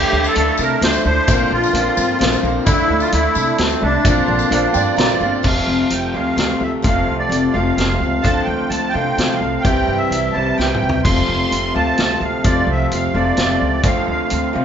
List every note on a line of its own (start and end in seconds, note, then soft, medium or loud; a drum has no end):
0.00 0.34 D3 medium
0.00 0.14 A3 medium
0.00 0.34 A3 medium
0.00 1.26 A3 medium
0.00 0.13 D4 loud
0.00 0.35 D4 medium
0.00 1.25 D4 medium
0.00 0.11 E4 medium
0.00 0.21 E4 medium
0.00 0.34 E4 medium
0.00 1.26 E4 medium
0.00 0.26 G4 loud
0.00 0.22 A4 medium
0.00 0.35 A4 loud
0.00 1.26 A4 medium
0.00 0.22 D5 medium
0.00 tambourine soft
0.12 0.26 D2 medium
0.12 0.34 A3 medium
0.12 0.36 D4 medium
0.12 0.36 E4 medium
0.24 0.61 A4 loud
0.24 tambourine medium
0.34 0.50 D2 medium
0.34 1.26 D3 medium
0.34 0.58 A3 medium
0.34 1.06 A3 loud
0.34 0.58 D4 medium
0.34 1.06 D4 loud
0.34 0.68 E4 medium
0.34 0.58 E4 medium
0.34 1.03 E4 loud
0.34 0.68 A4 medium
0.34 0.58 A4 medium
0.34 0.69 D5 medium
0.34 closed hi-hat medium
0.48 tambourine soft
0.57 0.72 C3 medium
0.57 0.81 D4 soft
0.57 0.81 E4 soft
0.57 0.82 A4 medium
0.57 0.81 A#4 loud
0.57 tambourine loud
0.80 0.95 D2 medium
0.80 1.28 A3 medium
0.80 1.30 D4 medium
0.80 1.14 E4 medium
0.80 1.28 E4 medium
0.80 1.14 A4 medium
0.80 1.28 A4 medium
0.80 1.03 C5 loud
0.80 1.14 D5 medium
0.80 snare medium
0.80 closed hi-hat medium
0.93 tambourine medium
1.04 1.19 D2 medium
1.04 1.27 A3 medium
1.04 1.30 D4 medium
1.04 1.26 E4 medium
1.04 1.53 C5 loud
1.04 tambourine soft
1.26 1.42 A#1 medium
1.26 1.72 A#2 medium
1.26 1.75 A#2 medium
1.26 1.73 D3 loud
1.26 1.75 D3 medium
1.26 1.72 F3 medium
1.26 1.54 A#3 loud
1.26 2.65 C4 medium
1.26 1.52 C4 loud
1.26 1.74 C4 medium
1.26 1.60 D4 medium
1.26 2.64 D4 medium
1.26 2.65 F4 medium
1.26 2.65 A#4 medium
1.26 1.60 A#4 medium
1.26 1.61 C5 medium
1.26 kick loud
1.26 closed hi-hat medium
1.26 tambourine loud
1.31 1.75 D4 loud
1.31 1.51 F4 loud
1.31 1.75 A#4 loud
1.39 tambourine soft
1.51 1.65 A#1 medium
1.51 1.74 C4 medium
1.51 1.75 F4 medium
1.51 2.40 F4 loud
1.55 1.74 A#3 medium
1.64 tambourine medium
1.72 1.87 A#1 medium
1.72 2.65 A#2 medium
1.72 2.65 D3 loud
1.72 1.97 F3 medium
1.72 2.45 A#3 medium
1.72 1.98 C4 medium
1.72 2.44 C4 loud
1.72 2.06 D4 medium
1.72 1.97 D4 medium
1.72 2.42 F4 loud
1.72 2.06 A#4 medium
1.72 1.95 A#4 medium
1.72 2.07 D5 medium
1.72 closed hi-hat medium
1.86 tambourine soft
1.97 2.11 G2 medium
1.97 2.18 F3 soft
1.97 2.18 C4 soft
1.97 2.20 D4 medium
1.97 2.20 A#4 soft
1.97 tambourine loud
2.18 2.35 A#1 medium
2.18 2.43 F3 medium
2.18 2.43 C4 medium
2.18 2.52 D4 medium
2.18 2.42 D4 medium
2.18 2.52 A#4 medium
2.18 2.42 A#4 medium
2.18 2.53 C5 medium
2.18 closed hi-hat medium
2.22 snare medium
2.33 tambourine medium
2.43 2.57 A#1 medium
2.43 2.66 F3 soft
2.43 2.67 A#3 medium
2.43 2.67 C4 medium
2.43 2.66 C4 medium
2.43 2.66 D4 medium
2.43 2.65 F4 medium
2.43 2.66 A#4 medium
2.43 tambourine soft
2.64 2.81 D2 loud
2.64 3.11 D3 medium
2.64 3.13 D3 medium
2.64 4.04 A3 medium
2.64 3.11 A3 medium
2.64 2.91 A3 loud
2.64 4.04 D4 medium
2.64 3.13 D4 medium
2.64 2.90 D4 loud
2.64 3.01 E4 loud
2.64 4.04 E4 medium
2.64 2.99 E4 medium
2.64 3.14 E4 medium
2.64 4.04 A4 medium
2.64 3.00 A4 medium
2.64 3.00 D5 medium
2.64 kick loud
2.64 closed hi-hat medium
2.64 tambourine loud
2.68 2.89 E4 loud
2.68 3.14 A4 loud
2.79 tambourine soft
2.89 3.03 D2 medium
2.89 3.12 A3 medium
2.89 3.13 D4 medium
2.89 3.13 E4 medium
3.00 3.13 F4 loud
3.00 tambourine medium
3.11 3.27 D2 medium
3.11 4.04 D3 medium
3.11 3.57 A3 medium
3.11 3.83 A3 medium
3.11 3.57 D4 medium
3.11 3.82 D4 loud
3.11 3.60 E4 loud
3.11 3.81 E4 loud
3.11 3.59 E4 medium
3.11 3.45 A4 medium
3.11 3.46 D5 medium
3.11 closed hi-hat medium
3.16 3.60 A4 medium
3.23 tambourine soft
3.35 3.50 C3 medium
3.35 tambourine loud
3.58 3.73 D2 medium
3.58 4.05 A3 medium
3.58 3.83 C4 medium
3.58 4.05 D4 medium
3.58 4.06 E4 medium
3.58 3.92 A4 medium
3.58 4.06 A4 medium
3.58 3.93 D5 medium
3.58 snare medium
3.58 closed hi-hat medium
3.69 tambourine medium
3.82 3.96 C2 medium
3.82 4.05 A3 medium
3.82 4.95 D4 medium
3.82 4.05 D4 medium
3.82 4.04 E4 medium
4.04 4.19 A#1 loud
4.04 4.50 A#2 medium
4.04 4.52 A#2 medium
4.04 4.51 D3 medium
4.04 4.51 D3 loud
4.04 4.50 F3 medium
4.04 4.29 A#3 medium
4.04 5.44 C4 medium
4.04 4.51 C4 loud
4.04 4.28 C4 medium
4.04 5.43 D4 medium
4.04 4.39 D4 medium
4.04 4.51 D4 medium
4.04 5.44 F4 medium
4.04 4.27 F4 loud
4.04 4.52 A#4 medium
4.04 4.39 A#4 medium
4.04 5.44 A#4 medium
4.04 4.39 C5 medium
4.04 kick loud
4.04 closed hi-hat medium
4.04 tambourine medium
4.28 4.42 A#1 medium
4.28 4.51 A#3 medium
4.28 4.52 C4 medium
4.28 4.52 F4 medium
4.39 tambourine medium
4.51 4.65 A#1 medium
4.51 5.43 A#2 medium
4.51 5.44 D3 loud
4.51 4.95 F3 medium
4.51 5.22 A#3 loud
4.51 4.96 C4 medium
4.51 5.21 C4 loud
4.51 4.85 D4 medium
4.51 4.97 D4 medium
4.51 5.20 F4 loud
4.51 4.85 A#4 medium
4.51 4.98 A#4 medium
4.51 4.85 C5 medium
4.51 4.74 F5 medium
4.51 closed hi-hat medium
4.70 4.73 F#5 medium
4.70 4.97 G5 medium
4.74 4.89 G2 medium
4.74 5.48 D5 medium
4.74 tambourine loud
4.95 5.12 A#1 medium
4.95 5.42 F3 medium
4.95 5.43 C4 medium
4.95 5.31 D4 medium
4.95 5.45 D4 medium
4.95 5.32 A#4 medium
4.95 5.45 A#4 medium
4.95 5.32 C5 medium
4.95 5.29 F5 medium
4.95 5.31 A#5 loud
4.95 snare medium
4.95 closed hi-hat medium
5.09 tambourine medium
5.20 5.35 G1 medium
5.20 5.44 A#3 medium
5.20 5.44 C4 medium
5.20 5.43 F4 medium
5.20 tambourine soft
5.43 5.62 F1 medium
5.43 6.17 F2 medium
5.43 6.13 C3 medium
5.43 5.89 F3 medium
5.43 6.16 F3 medium
5.43 6.16 A3 medium
5.43 5.91 C4 medium
5.43 6.15 C4 medium
5.43 5.92 F4 medium
5.43 5.92 A4 medium
5.43 5.69 F5 medium
5.43 kick loud
5.43 crash medium
5.48 6.14 F4 medium
5.67 5.85 F1 medium
5.67 5.93 F5 medium
5.90 6.09 F1 medium
5.90 6.14 F3 soft
5.90 6.14 C4 medium
5.90 6.14 F4 medium
5.90 6.13 A4 medium
5.90 6.16 G5 medium
5.90 closed hi-hat medium
6.14 6.32 D2 medium
6.14 6.83 F2 medium
6.14 6.84 C3 medium
6.14 6.85 F3 medium
6.14 6.85 A3 medium
6.14 6.86 C4 medium
6.14 6.37 C4 soft
6.14 6.87 F4 medium
6.14 6.37 F4 soft
6.14 6.38 A4 soft
6.14 6.63 F5 medium
6.37 6.55 D2 medium
6.37 6.61 F3 medium
6.37 6.61 C4 medium
6.37 6.60 F4 medium
6.37 6.59 A4 medium
6.37 snare medium
6.37 closed hi-hat medium
6.60 6.79 D2 medium
6.60 6.82 C4 soft
6.60 6.83 F4 soft
6.60 6.84 A4 soft
6.60 6.72 E5 medium
6.82 7.02 F1 medium
6.82 7.53 F2 medium
6.82 7.53 C3 medium
6.82 7.29 F3 medium
6.82 7.56 F3 medium
6.82 7.55 A3 loud
6.82 7.31 C4 medium
6.82 7.55 C4 loud
6.82 7.31 F4 medium
6.82 7.32 A4 medium
6.82 7.17 F5 medium
6.82 kick loud
6.82 closed hi-hat medium
6.87 7.54 F4 medium
7.07 7.25 C2 medium
7.19 7.55 D5 medium
7.29 7.48 F1 medium
7.29 7.54 F3 medium
7.29 7.55 C4 medium
7.29 7.54 F4 medium
7.29 7.53 A4 medium
7.29 closed hi-hat medium
7.52 7.72 F1 medium
7.52 8.23 A3 medium
7.52 8.25 C4 medium
7.52 8.23 F4 medium
7.52 7.78 F4 soft
7.52 7.78 A4 medium
7.52 8.25 F5 medium
7.56 8.24 F2 medium
7.56 8.24 C3 medium
7.56 8.23 F3 medium
7.56 7.78 C4 soft
7.77 7.95 F1 medium
7.77 8.01 F3 medium
7.77 8.02 C4 medium
7.77 8.02 F4 medium
7.77 8.02 A4 medium
7.77 snare medium
7.77 closed hi-hat medium
8.00 8.19 C#2 medium
8.00 8.25 F4 soft
8.00 8.24 A4 soft
8.05 8.24 C4 soft
8.22 8.42 D2 medium
8.22 8.92 D3 medium
8.22 8.71 D3 medium
8.22 8.69 F3 medium
8.22 8.93 A3 medium
8.22 8.70 C4 medium
8.22 8.94 C4 medium
8.22 8.70 D4 medium
8.22 8.47 A5 loud
8.22 kick loud
8.22 closed hi-hat medium
8.26 8.93 F4 loud
8.26 8.71 A4 medium
8.43 8.70 G5 medium
8.47 8.65 D2 medium
8.69 8.89 D2 medium
8.69 8.94 F3 medium
8.69 8.94 C4 medium
8.69 8.95 D4 medium
8.69 8.93 A4 medium
8.69 8.95 A5 medium
8.69 closed hi-hat medium
8.89 9.40 G5 medium
8.94 9.13 C3 medium
8.94 9.64 D3 medium
8.94 9.64 A3 medium
8.94 9.66 C4 medium
8.94 9.17 C4 soft
8.94 9.18 D4 soft
8.94 9.63 F4 medium
8.94 9.18 A4 medium
9.18 9.36 C3 medium
9.18 9.41 F3 medium
9.18 9.42 C4 medium
9.18 9.42 D4 medium
9.18 9.41 A4 medium
9.18 snare medium
9.18 closed hi-hat medium
9.36 9.63 F5 medium
9.41 9.59 C2 medium
9.41 9.64 C4 soft
9.41 9.65 D4 soft
9.41 9.65 A4 soft
9.61 9.82 C2 medium
9.61 10.33 C3 medium
9.61 9.99 G5 loud
9.61 closed hi-hat medium
9.65 10.12 C3 medium
9.65 10.33 E3 medium
9.65 10.10 G3 medium
9.65 10.34 G3 medium
9.65 10.12 C4 medium
9.65 10.35 C4 medium
9.65 10.12 E4 medium
9.65 10.33 E4 medium
9.65 10.12 G4 medium
9.65 kick loud
9.88 10.06 G2 medium
9.97 10.34 E5 medium
10.11 10.29 C2 medium
10.11 10.56 G3 soft
10.11 10.58 C4 medium
10.11 10.58 E4 medium
10.11 10.59 G4 medium
10.11 closed hi-hat medium
10.32 11.06 C4 medium
10.32 11.03 E4 medium
10.32 10.57 A5 medium
10.36 10.53 C2 medium
10.36 11.04 C3 medium
10.36 11.04 E3 medium
10.36 11.04 G3 medium
10.57 10.76 C2 medium
10.57 10.81 G3 medium
10.57 10.81 C4 medium
10.57 10.81 E4 medium
10.57 10.80 G4 medium
10.57 11.01 G5 loud
10.57 snare medium
10.74 mid tom medium
10.81 11.00 C2 medium
10.81 11.04 C4 soft
10.81 11.05 E4 soft
10.81 11.05 G4 soft
10.89 floor tom medium
11.03 11.23 F1 medium
11.03 11.77 F2 medium
11.03 11.74 C3 medium
11.03 11.50 F3 medium
11.03 11.76 F3 medium
11.03 11.75 A3 medium
11.03 11.50 C4 medium
11.03 11.75 C4 medium
11.03 11.51 F4 medium
11.03 11.74 F4 medium
11.03 11.52 A4 medium
11.03 11.76 C6 loud
11.03 kick loud
11.03 closed hi-hat medium
11.03 crash medium
11.29 11.46 F1 medium
11.50 11.69 F1 medium
11.50 11.74 F3 medium
11.50 11.74 C4 medium
11.50 11.75 F4 medium
11.50 11.74 A4 medium
11.50 closed hi-hat medium
11.74 11.93 D2 medium
11.74 12.43 F2 medium
11.74 12.44 C3 medium
11.74 12.45 F3 medium
11.74 12.46 A3 medium
11.74 12.47 C4 medium
11.74 11.98 C4 soft
11.74 12.47 F4 medium
11.74 11.99 F4 soft
11.74 11.98 A4 soft
11.74 12.23 A5 loud
11.98 12.16 D2 medium
11.98 12.21 F3 medium
11.98 12.22 C4 medium
11.98 12.21 F4 medium
11.98 12.20 A4 medium
11.98 snare medium
11.98 closed hi-hat medium
12.21 12.39 D2 medium
12.21 12.44 C4 soft
12.21 12.45 F4 soft
12.21 12.44 A4 soft
12.21 12.46 F5 medium
12.44 12.62 F1 medium
12.44 13.13 F2 medium
12.44 13.14 C3 medium
12.44 12.92 F3 medium
12.44 13.15 F3 medium
12.44 13.14 A3 loud
12.44 12.92 C4 medium
12.44 13.14 C4 medium
12.44 12.93 F4 medium
12.44 13.14 F4 medium
12.44 12.94 A4 medium
12.44 12.69 D5 loud
12.44 kick loud
12.44 closed hi-hat medium
12.67 12.85 C2 medium
12.71 12.93 E5 medium
12.91 13.09 F1 medium
12.91 13.15 F3 medium
12.91 13.15 C4 medium
12.91 13.15 F4 medium
12.91 13.14 A4 medium
12.91 13.17 F5 medium
12.91 closed hi-hat medium
13.14 13.32 F1 medium
13.14 13.84 F2 medium
13.14 13.84 C3 medium
13.14 13.82 F3 medium
13.14 13.83 A3 medium
13.14 13.83 C4 medium
13.14 13.83 F4 medium
13.14 13.38 F4 soft
13.14 13.38 A4 medium
13.14 13.87 D5 medium
13.18 13.37 C4 soft
13.37 13.55 F1 medium
13.37 13.83 F3 medium
13.37 13.83 C4 medium
13.37 13.84 F4 medium
13.37 13.84 A4 medium
13.37 snare medium
13.37 closed hi-hat medium
13.61 13.79 C#2 medium
13.82 14.02 D2 medium
13.82 14.52 D3 medium
13.82 14.30 D3 medium
13.82 14.29 F3 medium
13.82 14.55 A3 medium
13.82 14.30 C4 medium
13.82 14.53 C4 medium
13.82 14.31 F4 medium
13.82 14.52 F4 loud
13.82 14.32 A4 medium
13.82 14.08 F5 medium
13.82 kick loud
13.82 closed hi-hat medium
14.08 14.26 D2 medium
14.08 14.52 F5 medium
14.30 14.49 D2 medium
14.30 14.54 F3 medium
14.30 14.54 C4 medium
14.30 14.53 F4 medium
14.30 14.52 A4 medium
14.30 closed hi-hat medium
14.53 14.65 C3 medium
14.53 14.65 D3 medium
14.53 14.65 A3 medium
14.53 14.65 C4 medium
14.53 14.65 C4 soft
14.53 14.65 F4 medium
14.53 14.65 F4 soft
14.53 14.65 A4 medium